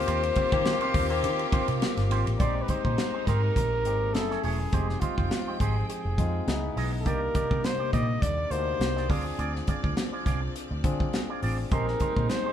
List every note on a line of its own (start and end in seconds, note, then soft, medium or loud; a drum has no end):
0.00 2.38 D#3 medium
0.00 0.37 A#3 medium
0.00 2.36 A#3 medium
0.00 0.37 C4 medium
0.00 2.37 C4 medium
0.00 0.37 F4 medium
0.00 2.37 F4 medium
0.00 0.37 G4 medium
0.00 2.38 G4 medium
0.00 1.79 C5 loud
0.07 0.29 D#2 loud
0.07 0.23 C4 medium
0.07 0.22 F4 medium
0.07 0.22 G4 loud
0.07 0.22 C5 medium
0.07 hi-hat pedal medium
0.07 ride medium
0.23 ride soft
0.35 0.49 C4 medium
0.35 0.49 F4 medium
0.35 0.49 G4 medium
0.35 0.49 C5 medium
0.35 kick medium
0.35 ride medium
0.52 0.74 D#3 loud
0.52 0.88 A#3 loud
0.52 0.89 C4 medium
0.52 0.63 C4 medium
0.52 0.89 F4 medium
0.52 0.63 F4 medium
0.52 0.63 G4 medium
0.52 0.89 G4 loud
0.52 0.63 C5 medium
0.52 kick loud
0.52 ride soft
0.65 muted clean electric guitar stroke soft
0.65 snare loud
0.65 ride medium
0.81 0.93 C4 medium
0.81 0.94 F4 medium
0.81 0.94 G4 loud
0.81 0.95 C5 loud
0.81 ride soft
0.94 1.25 D#2 medium
0.94 1.07 C4 medium
0.94 1.07 F4 medium
0.94 1.07 G4 medium
0.94 1.07 C5 medium
0.94 kick medium
0.94 open hi-hat medium
0.94 ride medium
1.10 1.83 A#3 medium
1.10 1.83 C4 medium
1.10 1.83 F4 medium
1.10 1.84 G4 loud
1.10 muted clean electric guitar stroke soft
1.10 ride soft
1.23 1.45 D#3 loud
1.23 hi-hat pedal medium
1.23 ride medium
1.39 muted clean electric guitar stroke soft
1.39 ride soft
1.52 1.68 C4 medium
1.52 1.68 F4 medium
1.52 1.68 G4 medium
1.52 1.67 C5 medium
1.52 kick loud
1.52 ride medium
1.68 1.78 C3 medium
1.68 muted clean electric guitar stroke soft
1.68 ride medium
1.82 muted clean electric guitar stroke soft
1.82 snare loud
1.82 ride medium
1.97 2.10 G1 medium
1.97 muted clean electric guitar stroke medium
1.97 snare soft
1.97 ride soft
2.10 2.22 G#1 medium
2.10 2.27 C4 medium
2.10 2.26 F4 medium
2.10 2.26 G4 medium
2.10 2.25 C5 loud
2.10 ride medium
2.26 2.36 A1 medium
2.26 muted clean electric guitar stroke medium
2.26 ride medium
2.39 2.61 A#1 loud
2.39 4.13 G#3 medium
2.39 2.56 G#3 medium
2.39 3.15 G#3 medium
2.39 4.13 A#3 medium
2.39 3.15 C4 medium
2.39 4.13 D#4 medium
2.39 2.55 D#4 medium
2.39 3.15 D#4 medium
2.39 2.55 G4 medium
2.39 3.16 G4 medium
2.39 2.54 C5 loud
2.39 2.64 D5 medium
2.39 kick loud
2.39 closed hi-hat medium
2.56 muted clean electric guitar stroke soft
2.62 2.71 B4 medium
2.68 2.81 G#3 medium
2.68 2.82 D#4 medium
2.68 2.82 G4 medium
2.68 3.28 C5 medium
2.68 2.82 C5 medium
2.68 kick medium
2.68 closed hi-hat medium
2.85 2.95 A#2 medium
2.85 2.96 G#3 soft
2.85 2.96 D#4 soft
2.85 2.96 G4 medium
2.85 2.95 C5 medium
2.85 kick medium
2.98 snare loud
2.98 closed hi-hat medium
3.14 3.25 G#3 medium
3.14 3.25 D#4 medium
3.14 3.25 G4 medium
3.14 3.24 C5 medium
3.27 3.49 G#2 medium
3.27 3.43 G#3 medium
3.27 3.43 D#4 medium
3.27 3.42 G4 medium
3.27 4.15 A#4 loud
3.27 3.42 C5 medium
3.27 kick medium
3.27 snare soft
3.27 closed hi-hat medium
3.43 muted clean electric guitar stroke soft
3.56 3.85 A#1 medium
3.56 muted clean electric guitar stroke soft
3.56 kick medium
3.56 closed hi-hat loud
3.72 muted clean electric guitar stroke medium
3.85 4.14 G#1 medium
3.85 4.15 G#3 medium
3.85 4.15 C4 medium
3.85 4.15 D#4 medium
3.85 4.15 G4 medium
3.85 closed hi-hat medium
4.02 muted clean electric guitar stroke soft
4.14 4.36 F#1 loud
4.14 4.72 F#3 medium
4.14 4.72 A3 medium
4.14 4.62 A3 medium
4.14 4.72 C#4 medium
4.14 4.62 C#4 medium
4.14 4.72 E4 medium
4.14 4.63 E4 medium
4.14 4.63 G#4 medium
4.14 4.45 A4 medium
4.14 muted clean electric guitar stroke soft
4.14 snare loud
4.14 closed hi-hat medium
4.30 4.42 A3 medium
4.30 4.41 E4 medium
4.30 4.41 G#4 medium
4.30 4.41 C#5 medium
4.30 snare soft
4.43 4.65 E1 medium
4.43 4.59 A3 medium
4.43 4.59 E4 medium
4.43 5.02 G#4 medium
4.43 4.59 G#4 medium
4.43 4.58 C#5 medium
4.43 open hi-hat medium
4.59 muted clean electric guitar stroke soft
4.72 4.94 F1 loud
4.72 6.46 F3 medium
4.72 4.88 G#3 medium
4.72 5.48 G#3 medium
4.72 6.46 C4 medium
4.72 5.48 C4 medium
4.72 4.88 D#4 medium
4.72 5.48 D#4 medium
4.72 4.88 G4 medium
4.72 5.48 G4 medium
4.72 4.88 C5 medium
4.72 6.46 G5 medium
4.72 kick loud
4.72 closed hi-hat medium
4.89 muted clean electric guitar stroke soft
4.89 snare soft
5.00 5.14 G#3 medium
5.00 5.14 D#4 medium
5.00 5.60 F4 medium
5.00 5.14 G4 medium
5.00 5.15 C5 medium
5.00 kick medium
5.00 closed hi-hat medium
5.18 5.28 F1 loud
5.18 5.29 G#3 soft
5.18 5.29 D#4 medium
5.18 5.28 G4 soft
5.18 5.28 C5 medium
5.18 kick medium
5.31 snare loud
5.31 closed hi-hat medium
5.47 5.58 G#3 medium
5.47 5.58 D#4 medium
5.47 5.58 G4 medium
5.47 5.57 C5 medium
5.60 5.82 G#1 medium
5.60 5.76 G#3 medium
5.60 5.76 D#4 medium
5.60 5.76 G4 medium
5.60 5.87 G#4 medium
5.60 5.75 C5 medium
5.60 kick medium
5.60 closed hi-hat medium
5.76 muted clean electric guitar stroke soft
5.89 6.73 G#4 medium
5.89 muted clean electric guitar stroke soft
5.89 closed hi-hat medium
6.05 6.15 F1 medium
6.05 muted clean electric guitar stroke soft
6.18 6.39 F2 medium
6.18 6.48 G#3 medium
6.18 6.48 C4 medium
6.18 6.47 D#4 medium
6.18 6.48 F4 medium
6.18 kick medium
6.18 closed hi-hat medium
6.34 muted clean electric guitar stroke soft
6.47 6.69 C#2 medium
6.47 7.05 C#3 medium
6.47 7.05 E3 medium
6.47 7.06 G#3 medium
6.47 6.95 B3 medium
6.47 7.05 B3 medium
6.47 6.95 D#4 medium
6.47 6.95 E4 medium
6.47 6.96 G#4 medium
6.47 muted clean electric guitar stroke soft
6.47 snare loud
6.47 closed hi-hat medium
6.63 muted clean electric guitar stroke soft
6.76 7.06 B1 medium
6.76 6.92 B3 medium
6.76 6.92 E4 medium
6.76 6.92 G#4 medium
6.76 6.91 D#5 medium
6.76 open hi-hat medium
6.93 muted clean electric guitar stroke soft
7.00 7.09 A4 medium
7.05 7.27 C2 loud
7.05 9.08 C3 medium
7.05 9.08 G3 medium
7.05 7.21 A#3 medium
7.05 7.81 A#3 medium
7.05 9.08 A#3 medium
7.05 7.81 D4 medium
7.05 7.21 D#4 medium
7.05 7.81 D#4 medium
7.05 7.21 G4 medium
7.05 7.81 G4 medium
7.05 7.67 A#4 medium
7.05 11.68 D5 medium
7.05 7.21 D5 medium
7.05 kick medium
7.05 closed hi-hat medium
7.22 muted clean electric guitar stroke soft
7.35 7.47 A#3 medium
7.35 7.47 D#4 medium
7.35 7.47 G4 medium
7.35 7.48 D5 medium
7.35 kick medium
7.35 closed hi-hat medium
7.50 7.61 C3 loud
7.50 7.61 A#3 soft
7.50 7.61 D#4 medium
7.50 7.61 G4 medium
7.50 7.61 D5 medium
7.50 kick medium
7.64 7.93 C5 loud
7.64 muted clean electric guitar stroke soft
7.64 snare loud
7.64 closed hi-hat medium
7.79 7.90 A#3 medium
7.79 7.90 D#4 medium
7.79 7.90 G4 medium
7.79 7.90 D5 medium
7.93 8.15 A#2 medium
7.93 8.09 A#3 medium
7.93 8.08 D#4 medium
7.93 8.07 G4 medium
7.93 8.07 D5 medium
7.93 8.23 D#5 loud
7.93 kick medium
7.93 closed hi-hat medium
8.08 muted clean electric guitar stroke soft
8.22 8.44 D#2 medium
8.22 8.53 D5 loud
8.22 muted clean electric guitar stroke soft
8.22 kick loud
8.22 closed hi-hat medium
8.37 muted clean electric guitar stroke soft
8.51 8.72 D2 medium
8.51 9.07 A#3 medium
8.51 9.07 D4 medium
8.51 9.07 D#4 medium
8.51 8.59 F#4 medium
8.51 9.12 C5 loud
8.51 closed hi-hat medium
8.59 9.11 G4 medium
8.67 muted clean electric guitar stroke soft
8.80 9.10 C2 loud
8.80 muted clean electric guitar stroke soft
8.80 snare loud
8.80 closed hi-hat medium
8.96 9.07 A#3 medium
8.96 9.07 D#4 medium
8.96 9.07 G4 medium
8.96 9.07 D5 medium
8.96 snare soft
9.09 9.31 D2 medium
9.09 11.69 F3 medium
9.09 9.25 C4 medium
9.09 10.03 C4 medium
9.09 11.69 C4 medium
9.09 10.03 D4 medium
9.09 9.24 F4 medium
9.09 10.04 F4 medium
9.09 9.24 G#4 medium
9.09 10.04 G#4 medium
9.09 9.69 G#4 medium
9.09 9.24 D5 medium
9.09 kick loud
9.09 open hi-hat medium
9.25 muted clean electric guitar stroke medium
9.39 9.60 D2 loud
9.39 9.54 C4 medium
9.39 9.54 F4 medium
9.39 9.54 G#4 medium
9.39 9.53 D5 medium
9.39 closed hi-hat medium
9.54 muted clean electric guitar stroke soft
9.54 snare soft
9.67 9.80 C4 medium
9.67 9.80 F4 medium
9.67 9.81 G#4 medium
9.67 9.81 D5 medium
9.67 kick medium
9.67 closed hi-hat medium
9.83 9.94 D2 medium
9.83 9.94 C4 soft
9.83 9.94 F4 medium
9.83 9.94 G#4 medium
9.83 9.94 D5 medium
9.83 kick medium
9.97 muted clean electric guitar stroke soft
9.97 snare loud
9.97 closed hi-hat medium
10.12 10.24 C4 medium
10.12 10.24 F4 medium
10.12 10.23 G#4 medium
10.12 10.23 D5 medium
10.25 10.48 C2 medium
10.25 10.41 C4 medium
10.25 10.41 F4 medium
10.25 10.41 G#4 medium
10.25 10.40 D5 medium
10.25 kick medium
10.25 snare soft
10.25 closed hi-hat medium
10.42 muted clean electric guitar stroke soft
10.55 muted clean electric guitar stroke soft
10.55 closed hi-hat medium
10.71 10.81 D2 medium
10.71 muted clean electric guitar stroke soft
10.84 11.05 D3 medium
10.84 11.40 C4 medium
10.84 11.40 D4 medium
10.84 11.40 F4 medium
10.84 11.40 G#4 medium
10.84 kick loud
10.84 closed hi-hat medium
11.00 muted clean electric guitar stroke soft
11.00 kick medium
11.13 muted clean electric guitar stroke soft
11.13 snare loud
11.13 closed hi-hat medium
11.29 11.40 C4 soft
11.29 11.40 F4 medium
11.29 11.40 G#4 medium
11.29 11.40 D5 medium
11.43 11.64 A1 medium
11.43 11.58 C4 medium
11.43 11.58 F4 medium
11.43 11.58 G#4 medium
11.43 11.57 D5 medium
11.43 open hi-hat medium
11.59 muted clean electric guitar stroke soft
11.71 11.93 A#1 loud
11.71 11.87 G#3 medium
11.71 12.53 G#3 medium
11.71 12.53 A#3 medium
11.71 12.46 C4 medium
11.71 11.87 D#4 medium
11.71 12.47 D#4 medium
11.71 12.53 D#4 medium
11.71 12.47 G4 medium
11.71 11.87 G4 medium
11.71 12.47 G#4 medium
11.71 12.32 A#4 medium
11.71 11.86 C5 loud
11.71 kick loud
11.71 closed hi-hat medium
11.88 muted clean electric guitar stroke medium
11.88 snare soft
12.00 12.13 G#3 medium
12.00 12.13 D#4 medium
12.00 12.13 G4 medium
12.00 12.13 C5 medium
12.00 kick medium
12.00 closed hi-hat medium
12.16 12.26 A#2 medium
12.16 12.27 G#3 soft
12.16 12.27 D#4 soft
12.16 12.27 G4 soft
12.16 12.27 C5 medium
12.16 kick medium
12.29 12.53 C5 medium
12.29 snare loud
12.29 closed hi-hat medium
12.45 12.53 G#3 medium
12.45 12.53 D#4 medium
12.45 12.53 G4 medium
12.45 12.53 C5 medium